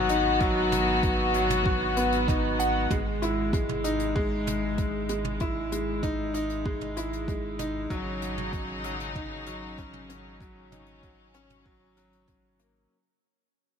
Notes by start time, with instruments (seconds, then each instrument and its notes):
Already playing: sub bass G#1, grand piano F#3 D#4 F#4, string section B3 F#4
0.09 grand piano D#4, closed hi-hat
0.40 grand piano F#3, kick, closed hi-hat
0.72 closed hi-hat, mid tom
1.03 kick, closed hi-hat
1.34 grand piano F#3, closed hi-hat
1.50 closed hi-hat, mid tom
1.66 grand piano F#4, kick
1.97 grand piano B3, closed hi-hat
2.12 closed hi-hat
2.28 grand piano D#4, kick, closed hi-hat, mid tom
2.59 grand piano F#5, closed hi-hat
2.91 sub bass G#1, grand piano G#3, string section G#3, kick, closed hi-hat, mid tom
3.22 grand piano E4, closed hi-hat
3.53 grand piano G#3, kick, closed hi-hat
3.69 mid tom
3.84 grand piano D#4, closed hi-hat
4.00 closed hi-hat
4.16 grand piano G#3, kick
4.47 closed hi-hat, mid tom
4.78 kick, closed hi-hat
5.09 grand piano G#3, closed hi-hat
5.25 mid tom
5.40 grand piano E4, kick, closed hi-hat
5.72 grand piano G#3, closed hi-hat
6.03 grand piano D#4, kick, closed hi-hat, mid tom
6.34 grand piano D#4, closed hi-hat
6.50 closed hi-hat
6.65 grand piano G#3, kick
6.81 mid tom
6.97 grand piano E4, closed hi-hat
7.13 closed hi-hat
7.28 grand piano G#3, kick, closed hi-hat
7.59 grand piano D#4, closed hi-hat, mid tom
7.90 sub bass G#1, string section C#3 F#3 D#4, grand piano F#3, kick, closed hi-hat
8.22 closed hi-hat
8.38 mid tom
8.53 kick, closed hi-hat
8.84 grand piano F#3, closed hi-hat
9.00 closed hi-hat
9.15 grand piano D#4, kick, mid tom
9.46 grand piano F#3, closed hi-hat
9.78 grand piano C#4, kick, closed hi-hat
9.93 mid tom
10.09 grand piano C#4, closed hi-hat
10.41 grand piano F#3, string section C#4, kick, closed hi-hat
10.72 grand piano D#4, closed hi-hat, mid tom
10.86 closed hi-hat
11.03 grand piano F#3, kick, closed hi-hat
11.34 grand piano C#4, closed hi-hat
11.50 closed hi-hat, mid tom
11.65 grand piano F#3, kick
11.97 grand piano F#3, closed hi-hat
12.13 closed hi-hat
12.28 grand piano C#4, kick, closed hi-hat, mid tom
12.59 grand piano A#3, closed hi-hat